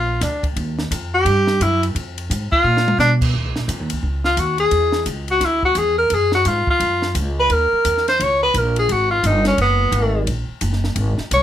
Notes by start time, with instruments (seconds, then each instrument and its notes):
Already playing: upright bass A#1, tenor saxophone F4
0.21 upright bass D2, tenor saxophone D4, kick, snare, hi-hat pedal, ride
0.43 kick, ride
0.56 upright bass D#2, kick, ride
0.79 snare
0.91 upright bass F2, kick, hi-hat pedal, ride
1.14 tenor saxophone G4
1.25 upright bass G2, kick, ride
1.47 snare
1.60 upright bass F#2, tenor saxophone E4, kick, hi-hat pedal, ride
1.83 ride
1.95 upright bass F2, kick, ride
2.18 ride
2.30 upright bass G#2, kick, hi-hat pedal, ride
2.52 tenor saxophone F4, muted upright bass stroke, kick
2.64 upright bass A#2
2.77 snare
2.88 mid tom
2.98 upright bass B2, tenor saxophone D4, snare, hi-hat pedal
3.21 kick, crash
3.34 upright bass D#2
3.45 upright bass C#2
3.56 upright bass A#1, snare
3.68 upright bass F2, kick, hi-hat pedal, ride
3.79 upright bass D#2
3.90 upright bass C#2, ride
4.03 upright bass C#2, kick
4.24 tenor saxophone F4, snare
4.37 upright bass D#2, tenor saxophone F#4, kick, hi-hat pedal, ride
4.58 tenor saxophone G#4, ride
4.71 upright bass E2, kick, ride
4.92 snare
5.06 upright bass C#2, kick, hi-hat pedal, ride
5.28 tenor saxophone F#4, ride
5.40 upright bass D2, kick, snare, ride
5.45 tenor saxophone E4
5.63 tenor saxophone F#4, kick
5.75 upright bass E2, tenor saxophone G#4, kick, hi-hat pedal, ride
5.98 tenor saxophone A#4
6.10 upright bass F#2, kick, ride
6.14 tenor saxophone G#4
6.32 tenor saxophone F#4, snare
6.45 upright bass G#2, tenor saxophone F4, kick, hi-hat pedal, ride
6.67 tenor saxophone F4, muted upright bass stroke, kick
6.80 upright bass F#2, kick, ride
7.02 snare
7.15 upright bass C#2, kick, hi-hat pedal, ride
7.40 tenor saxophone B4
7.50 upright bass D#2, tenor saxophone A#4, kick, ride
7.72 muted upright bass stroke
7.85 upright bass E2, kick, hi-hat pedal, ride
7.97 snare
8.08 tenor saxophone C5, snare, ride
8.20 upright bass C#2, tenor saxophone C#5, kick, ride
8.43 tenor saxophone B4
8.54 upright bass A#1, tenor saxophone A#4, kick, hi-hat pedal, ride
8.76 tenor saxophone G#4, ride
8.89 upright bass G#1, tenor saxophone F#4, kick, ride
9.11 tenor saxophone F4
9.23 upright bass G1, tenor saxophone D#4, kick, hi-hat pedal, ride
9.45 tenor saxophone C#4, snare, ride
9.58 upright bass F#1, tenor saxophone B3, kick, ride
9.92 upright bass G#1, kick, hi-hat pedal, ride
10.27 upright bass A#1, kick, ride
10.49 muted upright bass stroke
10.61 upright bass F#1, kick, hi-hat pedal, ride
10.73 snare
10.84 snare
10.96 upright bass G#1, kick, ride
11.18 muted upright bass stroke, snare
11.31 upright bass C2, tenor saxophone C#5, kick, hi-hat pedal, ride